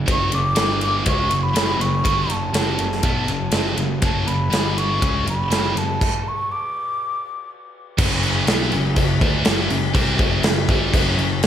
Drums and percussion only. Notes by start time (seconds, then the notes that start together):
0.08 kick, ride
0.32 ride
0.56 snare, ride
0.81 ride
1.06 kick, ride
1.31 ride
1.56 snare, ride
1.81 ride
2.05 kick, ride
2.30 ride
2.54 snare, ride
2.79 ride
2.92 snare
3.03 kick, ride
3.28 ride
3.52 snare, ride
3.78 ride
4.02 kick, ride
4.28 ride
4.53 snare, ride
4.78 ride
5.02 kick, ride
5.27 ride
5.52 snare, ride
5.77 ride
6.01 kick, crash
7.98 kick, crash
8.23 crash
8.47 snare, crash
8.72 crash
8.96 kick, crash
9.21 kick, crash
9.45 snare, crash
9.70 crash
9.95 kick, crash
10.19 kick, crash
10.43 snare, crash
10.69 kick, crash
10.94 kick, crash
11.19 crash
11.43 snare, crash